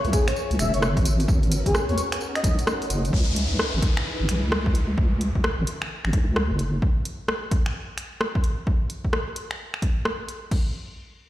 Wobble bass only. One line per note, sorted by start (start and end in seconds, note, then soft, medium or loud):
0.04 0.12 C#2 medium
0.51 0.58 C#2 loud
0.59 0.72 E1 loud
0.74 0.96 F#1 loud
0.97 1.27 G#1 medium
1.28 1.63 G#1 loud
1.66 1.73 G#1 medium
1.89 1.96 D#2 medium
2.44 2.56 B1 medium
2.90 3.11 F#1 medium
3.13 3.48 C#2 loud
3.51 3.58 C#2 medium
3.74 3.81 G#1 medium
4.20 4.27 G#1 loud
4.29 4.41 B1 loud
4.43 4.66 C#2 loud
4.66 4.96 C#2 medium
4.98 5.32 C#2 loud
5.35 5.43 C#2 medium
5.58 5.66 G#1 medium
6.05 6.12 G#1 loud
6.13 6.26 B1 loud
6.28 6.50 C#2 loud
6.51 6.81 F#1 medium